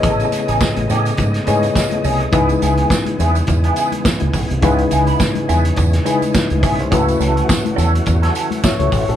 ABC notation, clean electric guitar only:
X:1
M:4/4
L:1/16
Q:"Swing 16ths" 1/4=105
K:C#m
V:1 name="Clean electric guitar"
[CDA]2 z [CDG] z2 [CDG] z3 [CDG] z3 [CDG] z | [B,EG] z [B,EG] [B,EG] z2 [B,EG] z2 [B,EG] [B,EG] z4 z | [B,EG] z [B,EG] [B,EB] z2 [B,EG] z3 [B,EG] z3 [B,EG] z | [CFA] z [CFA] [CFA] z2 [CFA] z2 [CFA] [CFA] z4 z |]